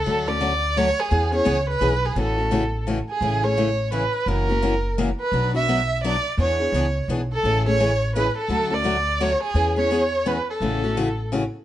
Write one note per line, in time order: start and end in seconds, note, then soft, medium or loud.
0.00 0.30 A4 medium
0.06 0.90 D2 medium
0.06 0.26 D3 medium
0.06 0.27 F#3 medium
0.06 0.27 A3 medium
0.06 0.27 C#4 medium
0.06 0.26 F#4 medium
0.28 0.40 A3 soft
0.28 0.40 C#4 soft
0.28 0.41 F#4 soft
0.28 0.79 D5 medium
0.41 0.52 D3 medium
0.41 0.52 F#3 medium
0.41 0.52 A3 medium
0.41 0.52 C#4 medium
0.41 0.52 F#4 medium
0.76 0.87 D3 medium
0.76 0.88 F#3 medium
0.76 0.88 A3 medium
0.76 0.88 C#4 medium
0.76 0.88 F#4 medium
0.76 1.01 C#5 medium
1.00 1.34 G#4 medium
1.11 1.39 E2 medium
1.11 1.32 E3 medium
1.11 1.32 B3 medium
1.11 1.31 C#4 medium
1.11 1.31 G#4 medium
1.32 1.44 B3 soft
1.32 1.44 C#4 soft
1.32 1.45 G#4 soft
1.32 1.66 C#5 medium
1.45 1.76 C#2 medium
1.45 1.57 E3 medium
1.45 1.57 B3 medium
1.45 1.57 C#4 medium
1.45 1.57 G#4 medium
1.69 2.07 B4 medium
1.81 2.11 B1 medium
1.81 1.92 E3 medium
1.81 1.92 B3 medium
1.81 1.93 C#4 medium
1.81 1.93 G#4 medium
2.05 2.18 G#4 medium
2.15 3.00 A1 medium
2.15 2.37 C#3 medium
2.15 2.37 E3 medium
2.15 2.37 A3 medium
2.15 2.37 C#4 medium
2.15 2.36 F#4 medium
2.20 2.84 A4 medium
2.38 2.51 A3 soft
2.38 2.51 C#4 soft
2.38 2.51 F#4 medium
2.51 2.62 C#3 medium
2.51 2.62 E3 medium
2.51 2.63 A3 medium
2.51 2.63 C#4 medium
2.51 2.63 F#4 medium
2.87 2.98 C#3 medium
2.87 2.98 E3 medium
2.87 2.98 A3 medium
2.87 2.98 C#4 medium
2.87 2.98 F#4 medium
3.10 3.45 G#4 medium
3.21 4.05 A1 medium
3.21 3.42 C#3 medium
3.21 3.42 E3 medium
3.21 3.43 A3 medium
3.21 3.42 C#4 medium
3.21 3.42 G#4 medium
3.43 3.57 A3 soft
3.43 3.57 C#4 soft
3.43 3.56 G#4 soft
3.43 3.92 C#5 medium
3.57 3.68 C#3 medium
3.57 3.68 E3 medium
3.57 3.69 A3 medium
3.57 3.68 C#4 medium
3.57 3.68 G#4 medium
3.92 4.03 C#3 medium
3.92 4.03 E3 medium
3.92 4.03 A3 medium
3.92 4.03 C#4 medium
3.92 4.03 G#4 medium
3.92 4.29 B4 medium
4.26 5.11 F#1 medium
4.26 4.48 C#3 medium
4.26 4.48 E3 medium
4.26 4.48 A#3 medium
4.26 4.48 C#4 medium
4.26 4.48 F#4 medium
4.26 4.97 A#4 medium
4.49 4.61 A#3 soft
4.49 4.62 C#4 soft
4.49 4.62 F#4 soft
4.62 4.73 C#3 medium
4.62 4.73 E3 medium
4.62 4.73 A#3 medium
4.62 4.74 C#4 medium
4.62 4.74 F#4 medium
4.98 5.09 C#3 medium
4.98 5.09 E3 medium
4.98 5.09 A#3 medium
4.98 5.09 C#4 medium
4.98 5.09 F#4 medium
5.20 5.52 B4 medium
5.32 6.17 B1 medium
5.32 5.53 B2 medium
5.32 5.54 F#3 medium
5.32 5.53 B3 medium
5.32 5.54 D4 medium
5.32 5.53 F#4 medium
5.54 5.68 B3 soft
5.54 5.68 D4 soft
5.54 5.67 F#4 medium
5.54 6.00 E5 medium
5.68 5.79 B2 medium
5.68 5.79 F#3 medium
5.68 5.79 B3 medium
5.68 5.79 D4 medium
5.68 5.79 F#4 medium
6.04 6.15 B2 medium
6.04 6.15 F#3 medium
6.04 6.15 B3 medium
6.04 6.15 D4 medium
6.04 6.15 F#4 medium
6.04 6.36 D5 medium
6.38 6.66 E2 medium
6.38 6.59 E3 medium
6.38 6.59 B3 medium
6.38 6.59 D4 medium
6.38 6.59 G#4 medium
6.38 7.06 C#5 medium
6.60 6.74 B3 soft
6.60 6.74 D4 soft
6.60 6.73 G#4 soft
6.72 7.03 C#2 medium
6.72 6.85 E3 medium
6.72 6.85 B3 medium
6.72 6.85 D4 medium
6.72 6.85 G#4 medium
7.08 7.38 B1 medium
7.08 7.20 E3 medium
7.08 7.20 B3 medium
7.08 7.20 D4 medium
7.08 7.20 G#4 medium
7.33 7.64 A4 medium
7.43 8.28 A1 medium
7.43 7.65 C#3 medium
7.43 7.65 E3 medium
7.43 7.65 A3 medium
7.43 7.65 C#4 medium
7.43 7.65 G#4 medium
7.66 7.79 A3 soft
7.66 7.79 C#4 soft
7.66 7.79 G#4 medium
7.66 8.13 C#5 medium
7.80 7.90 C#3 medium
7.80 7.91 E3 medium
7.80 7.91 A3 medium
7.80 7.91 C#4 medium
7.80 7.91 G#4 medium
8.15 8.26 C#3 medium
8.15 8.26 E3 medium
8.15 8.26 A3 medium
8.15 8.26 C#4 medium
8.15 8.26 G#4 medium
8.15 8.35 B4 medium
8.38 8.75 A4 medium
8.48 9.33 D2 medium
8.48 8.70 D3 medium
8.48 8.70 F#3 medium
8.48 8.70 A3 medium
8.48 8.70 C#4 medium
8.48 8.69 F#4 medium
8.70 8.84 A3 soft
8.70 8.83 C#4 soft
8.70 8.84 F#4 soft
8.70 9.24 D5 medium
8.84 8.95 D3 medium
8.84 8.96 F#3 medium
8.84 8.96 A3 medium
8.84 8.96 C#4 medium
8.84 8.96 F#4 medium
9.21 9.31 D3 medium
9.21 9.31 F#3 medium
9.21 9.31 A3 medium
9.21 9.31 C#4 medium
9.21 9.31 F#4 medium
9.21 9.42 C#5 medium
9.43 9.75 G#4 medium
9.54 10.39 E2 medium
9.54 9.76 E3 medium
9.54 9.76 B3 medium
9.54 9.76 C#4 medium
9.54 9.75 G#4 medium
9.76 9.90 B3 soft
9.76 9.90 C#4 soft
9.76 9.90 G#4 medium
9.76 10.29 C#5 medium
9.91 10.02 E3 medium
9.91 10.02 B3 medium
9.91 10.02 C#4 medium
9.91 10.02 G#4 medium
10.26 10.37 E3 medium
10.26 10.37 B3 medium
10.26 10.37 C#4 medium
10.26 10.37 G#4 medium
10.26 10.48 B4 medium
10.50 11.29 A4 medium
10.60 11.45 A1 medium
10.60 10.82 C#3 medium
10.60 10.82 E3 medium
10.60 10.82 A3 medium
10.60 10.82 C#4 medium
10.60 10.82 F#4 medium
10.84 10.96 A3 soft
10.84 10.96 C#4 soft
10.84 10.96 F#4 medium
10.97 11.08 C#3 medium
10.97 11.08 E3 medium
10.97 11.08 A3 medium
10.97 11.08 C#4 medium
10.97 11.08 F#4 medium
11.32 11.43 C#3 medium
11.32 11.43 E3 medium
11.32 11.43 A3 medium
11.32 11.43 C#4 medium
11.32 11.43 F#4 medium